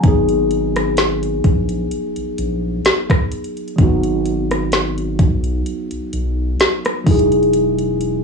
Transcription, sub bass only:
0.04 1.40 G#1 loud
1.44 1.87 A#1 medium
2.17 2.25 A#1 medium
2.38 2.81 A#1 medium
3.78 5.21 G#1 loud
5.19 5.62 B1 loud
5.92 6.00 B1 medium
6.13 6.56 B1 medium
7.07 8.24 E1 loud

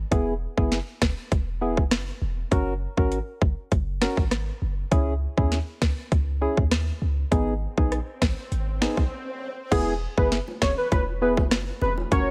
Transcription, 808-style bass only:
0.12 0.47 E1 loud
0.58 0.80 F#1 loud
1.02 1.14 E1 medium
1.32 1.79 E1 medium
1.77 2.11 F#1 medium
2.22 2.45 E1 medium
2.52 2.87 F#1 loud
2.98 3.20 G#1 medium
3.42 3.54 F#1 medium
3.72 4.07 F#1 loud
4.17 4.51 G#1 medium
4.62 4.85 F#1 medium
4.92 5.27 C#2 loud
5.38 5.60 D#2 medium
5.82 5.94 C#2 medium
6.12 6.47 C#2 loud
6.57 6.91 D#2 medium
7.02 7.25 C#2 medium
7.32 7.67 G#1 loud
7.78 8.00 A#1 medium
8.22 8.34 G#1 medium
8.52 8.87 G#1 loud
8.97 9.08 A#1 medium
9.72 10.07 E1 loud
10.18 10.40 F#1 loud
10.62 10.74 E1 medium
10.92 11.39 E1 loud
11.37 11.71 F#1 loud
11.82 12.05 E1 medium
12.12 12.31 F#1 loud

